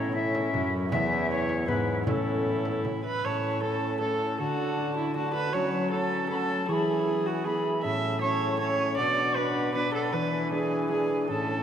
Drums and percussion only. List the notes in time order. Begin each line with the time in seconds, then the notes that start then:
0.35 frame drum
0.54 frame drum
0.92 frame drum
1.49 frame drum
1.68 frame drum
2.07 frame drum
2.65 frame drum
2.85 frame drum